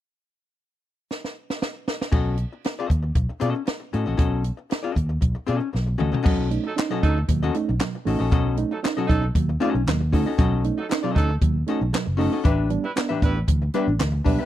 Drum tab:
CC |----------------|x---------------|----------------|x---------------|
HH |----------------|--x-x-x-x-x-x-x-|x-x-x-x-x-x-----|--x-x-x-x-x-x-o-|
CP |----------------|----------------|----------------|----x-------x---|
SD |--------oo-oo-oo|----o-------o---|----o-------o---|----o-------o---|
T2 |----------------|----------------|--------------o-|----------------|
FT |----------------|----------------|---------------o|----------------|
BD |----------------|o-----o-o-------|o-----o-o-------|o-----o-o-------|

CC |----------------|----------------|----------------|
HH |x-x-x-x-x-x-x-o-|x-x-x-x-x-x-x-o-|x-x-x-x-x-x-x-o-|
CP |----x-------x---|----x-------x---|----x-------x---|
SD |----o-------o---|----o-------o---|----o-------o---|
T2 |----------------|----------------|----------------|
FT |----------------|----------------|----------------|
BD |o-----o-o-----o-|o-----o-o-------|o-----o-o-----o-|